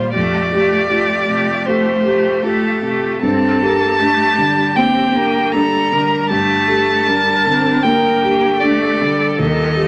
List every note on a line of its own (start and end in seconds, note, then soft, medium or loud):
0.00 0.18 A#2 soft
0.00 0.14 G3 soft
0.00 0.11 A#3 soft
0.00 0.18 A#3 soft
0.00 0.13 F4 soft
0.00 0.18 F4 soft
0.00 3.23 F4 soft
0.00 0.11 G4 soft
0.00 0.18 G4 soft
0.00 0.14 C5 medium
0.14 1.64 F2 soft
0.14 0.52 A3 soft
0.14 3.23 A3 soft
0.14 0.52 G4 soft
0.14 3.19 G4 soft
0.14 1.68 D5 medium
0.52 0.90 A3 soft
0.52 0.90 G4 soft
0.52 1.14 G4 soft
0.90 1.28 A3 soft
0.90 1.53 F4 soft
0.90 1.28 G4 soft
1.28 1.91 C3 soft
1.28 1.66 A3 soft
1.28 1.66 G4 soft
1.67 2.05 A3 soft
1.67 2.29 A3 soft
1.67 2.05 G4 soft
1.67 2.44 C5 medium
2.05 2.43 A3 soft
2.05 2.43 G4 soft
2.05 2.67 G4 soft
2.43 2.83 A3 medium
2.43 3.07 F4 soft
2.43 2.82 G4 medium
2.43 3.22 A4 medium
2.82 3.22 C3 soft
2.82 3.23 A3 soft
2.82 3.22 G4 medium
3.22 4.72 G2 medium
3.22 6.29 G3 soft
3.22 3.64 C4 medium
3.22 6.29 D4 medium
3.22 6.26 G4 soft
3.22 4.01 A4 soft
3.22 4.78 A5 loud
3.62 4.01 A#3 soft
3.62 4.23 G4 soft
4.00 4.40 A3 medium
4.00 4.61 D4 soft
4.00 4.76 G4 medium
4.38 4.99 D3 soft
4.38 4.78 G3 medium
4.76 5.38 A#3 soft
4.76 5.16 C4 medium
4.76 5.52 G4 medium
4.76 5.54 G5 medium
5.14 5.55 A#3 medium
5.14 5.76 G4 soft
5.52 6.33 G3 medium
5.52 6.15 D4 soft
5.52 5.94 A4 medium
5.52 6.29 A#5 medium
5.92 6.54 D3 soft
5.92 6.32 A#4 medium
6.30 7.80 G2 soft
6.30 9.88 G3 soft
6.30 7.09 A3 medium
6.30 9.35 D4 soft
6.30 6.68 G4 medium
6.30 9.88 G4 medium
6.30 7.85 A5 medium
6.69 7.31 G4 soft
6.69 7.09 A4 medium
7.07 7.49 G3 medium
7.07 7.69 D4 soft
7.07 7.84 A#4 medium
7.46 8.08 D3 soft
7.46 7.87 C4 medium
7.83 8.46 A#3 soft
7.83 8.61 A#3 soft
7.83 8.24 A#4 medium
7.83 8.62 G5 medium
8.22 8.61 G4 medium
8.22 8.85 G4 soft
8.60 9.02 A3 medium
8.60 9.24 D4 soft
8.60 9.88 A4 medium
8.60 9.40 D5 medium
9.00 9.39 D3 soft
9.00 9.39 G3 soft
9.38 9.88 D#2 soft
9.38 9.78 D#3 soft
9.38 9.88 F4 soft
9.38 9.88 D#5 medium
9.77 9.88 F3 medium
9.77 9.88 G4 soft